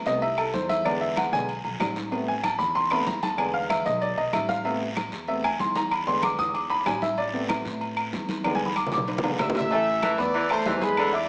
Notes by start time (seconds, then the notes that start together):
0.06 C2 C3 A3 B3 D#5, high conga, short guiro
0.22 E5, high conga, low agogo, long guiro
0.38 A4, high conga, low agogo, claves
0.53 E2 C5, high conga, short guiro
0.69 E5, high conga, low agogo, short guiro
0.84 D3 G#3 B3 D5, high conga, low agogo, long guiro, claves
1.01 E5, high conga
1.17 F#5, high conga, low agogo, short guiro, claves
1.32 B1 D3 G#3 B3 G#5, high conga, short guiro
1.49 high conga, low agogo, long guiro
1.64 B1, high conga, low agogo
1.80 A1, high conga, low timbale, low agogo, short guiro, claves
1.96 high conga, short guiro
2.11 C3 A3 B3, high conga, low agogo, long guiro
2.28 G#5, high conga
2.43 A5, high conga, low agogo, short guiro, claves
2.59 E2 B5, high conga, short guiro
2.75 C6, high conga, low agogo, long guiro
2.91 C3 A3 B3 B5, high conga, low agogo, claves
3.07 E2 A#5, high conga, short guiro
3.23 A5, high conga, low agogo, short guiro
3.37 D3 G#3 B3 G#5, high conga, low agogo, long guiro, claves
3.54 F5, high conga
3.70 E5, high conga, low agogo, short guiro, claves
3.86 B1 D#5, high conga, short guiro
4.01 D5, high conga, low agogo, long guiro
4.17 B1 D#5, high conga, low agogo
4.33 A1 E5, high conga, low agogo, short guiro, claves
4.49 F5, high conga, short guiro
4.64 C3 A3 B3 E5, high conga, low agogo, long guiro
4.81 high conga
4.96 high conga, low agogo, short guiro, claves
5.12 E2, high conga, short guiro
5.28 C3 A3 B3 E5, high conga, low agogo, long guiro
5.44 G#5, high conga, low agogo, claves
5.60 E2 C6, high conga, short guiro
5.75 A#5, high conga, low agogo, short guiro
5.91 B5, high conga, low agogo, long guiro, claves
6.07 D3 G#3 B3 C6, high conga
6.23 D6, high conga, low agogo, short guiro, claves
6.38 E2 D#6, high conga, short guiro
6.54 D6, high conga, low agogo, long guiro
6.70 B5, high conga, low agogo
6.86 A1 G#5, high conga, low timbale, low agogo, short guiro, claves
7.02 E5, high conga, short guiro
7.18 D5, high conga, low agogo, long guiro
7.33 C3 A3 B3, high conga
7.49 high conga, low agogo, short guiro, claves
7.65 A2, high conga, short guiro
7.81 high conga, low agogo, long guiro
7.97 high conga, low agogo, claves
8.13 E2, high conga, short guiro
8.29 high conga, low agogo, short guiro
8.44 D3 G#3 B3, high conga, low agogo, long guiro, claves
8.55 G#5, high conga
8.65 B5, high conga
8.76 D6, high conga, low agogo, short guiro, claves
8.87 low conga
8.92 B1 D6, short guiro
8.97 low conga
9.07 high timbale, low agogo, long guiro
9.18 low conga
9.23 B1 D3 G#3 B3, high timbale, low agogo
9.28 low conga
9.39 A1 E5 E6, low conga, low timbale, low agogo, short guiro, claves
9.50 low conga
9.55 E5 E6, low timbale, short guiro
9.60 low conga
9.71 E3 A3 E4 E5, high conga, low agogo, long guiro
9.87 high conga
10.03 E3 A3 A4 A5, high conga, low agogo, short guiro, claves
10.18 E2 B3 B4 D5 B5 D6, high conga, short guiro
10.34 E3, high conga, low agogo, long guiro
10.50 A3 A4 C5 A5 C6, high conga, low agogo, claves
10.66 E2 E3 E4 E5, high conga, low timbale, short guiro
10.75 C5
10.81 G#3 G#4 B4 G#5 B5, high conga, low agogo, short guiro
10.97 D3, high conga, low agogo, long guiro, claves
11.13 E4 D5 E5 D6 E6, high conga